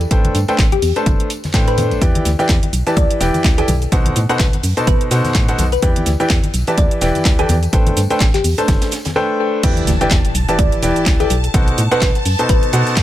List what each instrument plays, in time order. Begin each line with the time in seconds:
0.01 closed hi-hat, tambourine
0.11 fm bass A1, grand piano A3 D4 A4 B4 C5 G5, kick, closed hi-hat
0.25 closed hi-hat, high conga
0.35 fm bass G2, closed hi-hat, open hi-hat, tambourine
0.48 grand piano A3 D4 A4 B4 C5 G5, closed hi-hat, tambourine
0.58 fm bass A1, kick, snare, clap, closed hi-hat
0.72 synth pluck G4, closed hi-hat, high conga
0.82 fm bass E2, open hi-hat, tambourine
0.96 grand piano A3 D4 A4 B4 C5 A5, closed hi-hat, tambourine
1.06 fm bass G1, kick, closed hi-hat, tambourine, high conga
1.20 closed hi-hat
1.30 closed hi-hat, open hi-hat, tambourine
1.44 snare, closed hi-hat, tambourine, high conga
1.53 fm bass A2, grand piano A3 D4 A4 B4 C5 G5, kick, snare, clap, closed hi-hat, tambourine
1.67 synth pluck B4, closed hi-hat
1.78 closed hi-hat, open hi-hat, tambourine, high conga
1.91 fm bass A1, closed hi-hat, tambourine
2.02 fm bass E2, grand piano E3 E4 G4 B4 D5 G5, kick, closed hi-hat, tambourine, shaker
2.15 closed hi-hat, high conga, shaker
2.25 fm bass D2, snare, closed hi-hat, open hi-hat, tambourine, shaker
2.39 grand piano E3 E4 G4 B4 D5 G5, tambourine, shaker
2.49 fm bass E2, kick, snare, clap, closed hi-hat, shaker
2.63 closed hi-hat, high conga, shaker
2.73 fm bass B1, closed hi-hat, open hi-hat, tambourine, shaker
2.87 grand piano E3 E4 G4 B4 D5 A5, closed hi-hat, tambourine, shaker
2.96 fm bass D2, synth pluck D5, kick, closed hi-hat, tambourine, high conga, shaker
3.10 closed hi-hat, shaker
3.20 fm bass E1, grand piano E3 E4 G4 B4 D5 G5, snare, closed hi-hat, open hi-hat, tambourine, shaker
3.34 closed hi-hat, tambourine, high conga, shaker
3.44 fm bass D2, kick, snare, clap, closed hi-hat, shaker
3.58 grand piano E4 G4 B4 D5 G5, synth pluck A4, closed hi-hat, shaker
3.68 fm bass B1, closed hi-hat, open hi-hat, tambourine, high conga, shaker
3.82 closed hi-hat, tambourine, shaker
3.92 fm bass B1, grand piano B2 D#4 A4 B4 C5 F#5, kick, closed hi-hat, tambourine, shaker
4.06 closed hi-hat, high conga, shaker
4.16 fm bass A2, closed hi-hat, open hi-hat, tambourine, shaker
4.29 grand piano B2 D#4 A4 B4 C5 F#5, synth pluck B4, closed hi-hat, tambourine, shaker
4.39 fm bass B1, kick, snare, clap, closed hi-hat, shaker
4.53 closed hi-hat, high conga, shaker
4.63 fm bass F#2, open hi-hat, tambourine, shaker
4.77 grand piano B2 D#4 A4 B4 C5 A5, closed hi-hat, tambourine, shaker
4.87 fm bass A1, synth pluck B4, kick, closed hi-hat, tambourine, high conga, shaker
5.01 closed hi-hat, shaker
5.11 grand piano B2 D#4 A4 B4 C5 F#5, fm bass B2, closed hi-hat, open hi-hat, tambourine, shaker
5.24 snare, closed hi-hat, tambourine, high conga, shaker
5.35 fm bass A2, kick, snare, clap, closed hi-hat, shaker
5.48 grand piano B2 D#4 A4 B4 C5 F#5, closed hi-hat, shaker
5.58 fm bass B1, closed hi-hat, open hi-hat, tambourine, high conga, shaker
5.72 synth pluck B4, closed hi-hat, tambourine, shaker
5.82 fm bass E2, grand piano E3 E4 G4 B4 D5 G5, synth pluck B4, kick, closed hi-hat, shaker
5.96 closed hi-hat, high conga, shaker
6.06 fm bass D2, snare, closed hi-hat, open hi-hat, tambourine, shaker
6.20 grand piano E3 E4 G4 B4 D5 G5, tambourine, shaker
6.30 fm bass E2, kick, snare, clap, closed hi-hat, shaker
6.43 closed hi-hat, high conga, shaker
6.54 fm bass B1, closed hi-hat, open hi-hat, tambourine, shaker
6.67 grand piano E3 E4 G4 B4 D5 A5, closed hi-hat, tambourine, shaker
6.78 fm bass D2, synth pluck D5, kick, closed hi-hat, tambourine, high conga, shaker
6.91 closed hi-hat, shaker
7.01 fm bass E1, grand piano E3 E4 G4 B4 D5 G5, snare, closed hi-hat, open hi-hat, tambourine, shaker
7.15 closed hi-hat, tambourine, high conga, shaker
7.25 fm bass D2, kick, snare, clap, closed hi-hat, shaker
7.39 grand piano E3 E4 G4 B4 D5 G5, synth pluck A4, closed hi-hat, shaker
7.49 fm bass E2, closed hi-hat, open hi-hat, tambourine, high conga, shaker
7.63 closed hi-hat, tambourine, shaker
7.73 fm bass A1, grand piano A3 D4 A4 B4 C5 G5, kick, closed hi-hat, shaker
7.87 closed hi-hat, high conga, shaker
7.97 fm bass G2, closed hi-hat, open hi-hat, tambourine, shaker
8.10 grand piano A3 D4 A4 B4 C5 G5, closed hi-hat, tambourine, shaker
8.20 fm bass A1, kick, snare, clap, closed hi-hat, shaker
8.34 synth pluck G4, clap, closed hi-hat, high conga, shaker
8.44 fm bass E2, open hi-hat, tambourine, shaker
8.58 grand piano A3 D4 A4 B4 C5 A5, closed hi-hat, tambourine, shaker
8.68 fm bass G1, kick, snare, closed hi-hat, tambourine, high conga, shaker
8.81 snare, closed hi-hat, shaker
8.91 snare, closed hi-hat, open hi-hat, tambourine, shaker
9.05 snare, closed hi-hat, tambourine, high conga, shaker
9.16 grand piano A3 D4 A4 B4 C5 G5
9.63 fm bass E2, grand piano E3 E4 G4 B4 D5 G5, string machine A5, kick, closed hi-hat, crash, impact, shaker
9.77 closed hi-hat, shaker
9.87 fm bass D2, snare, closed hi-hat, open hi-hat, shaker
10.01 grand piano E3 E4 G4 B4 D5 G5, closed hi-hat, shaker
10.10 fm bass E2, kick, snare, clap, closed hi-hat, shaker
10.25 closed hi-hat, shaker
10.35 fm bass B1, closed hi-hat, open hi-hat, shaker
10.49 grand piano E3 E4 G4 B4 D5 A5, closed hi-hat, shaker
10.59 fm bass D2, synth pluck D5, kick, closed hi-hat, shaker
10.72 closed hi-hat, shaker
10.83 fm bass E1, grand piano E3 E4 G4 B4 D5 G5, snare, closed hi-hat, open hi-hat, shaker
10.96 closed hi-hat, shaker
11.06 fm bass D2, kick, snare, clap, closed hi-hat, shaker
11.20 grand piano E4 G4 B4 D5 G5, synth pluck A4, closed hi-hat, shaker
11.30 fm bass B1, closed hi-hat, open hi-hat, shaker
11.44 closed hi-hat, shaker
11.54 fm bass B1, grand piano B2 D#4 A4 B4 C5 F#5, kick, closed hi-hat, shaker
11.68 closed hi-hat, shaker
11.78 fm bass A2, closed hi-hat, open hi-hat, shaker
11.91 grand piano B2 D#4 A4 B4 C5 F#5, synth pluck B4, closed hi-hat, shaker
12.01 fm bass B1, kick, snare, clap, closed hi-hat, shaker
12.15 closed hi-hat, shaker
12.25 fm bass F#2, open hi-hat, shaker
12.39 grand piano B2 D#4 A4 B4 C5 A5, closed hi-hat, shaker
12.49 fm bass A1, synth pluck B4, kick, closed hi-hat, shaker
12.63 closed hi-hat, shaker
12.73 fm bass B2, grand piano B2 D#4 A4 B4 C5 F#5, closed hi-hat, open hi-hat, shaker
12.87 snare, closed hi-hat, shaker
12.96 fm bass A2, kick, snare, clap, closed hi-hat, shaker